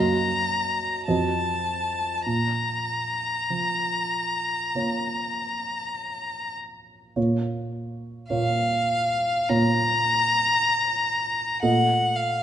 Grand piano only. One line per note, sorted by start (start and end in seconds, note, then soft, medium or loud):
0.00 1.04 F#2 soft
0.00 1.03 A#3 soft
0.00 1.03 F#4 soft
0.00 1.04 D#5 soft
1.08 2.23 F2 soft
1.08 2.23 C4 soft
1.08 2.23 F#4 soft
1.08 2.23 D#5 soft
2.26 7.13 A#2 soft
3.50 5.49 F3 soft
4.75 7.12 A#3 soft
4.75 7.12 F4 soft
4.75 7.13 C#5 soft
7.16 8.27 A#2 soft
7.16 8.27 A#3 soft
7.16 8.27 F4 soft
7.16 8.27 C#5 soft
8.30 9.46 A#2 soft
8.30 9.46 A#3 soft
8.30 9.46 F4 soft
8.30 9.46 C#5 soft
9.49 11.59 A#2 soft
9.49 11.59 A#3 soft
9.49 11.59 F4 soft
9.49 11.59 C#5 soft
11.62 12.43 A#2 soft
11.62 12.43 A3 soft
11.62 12.43 F4 soft
11.62 12.43 D#5 soft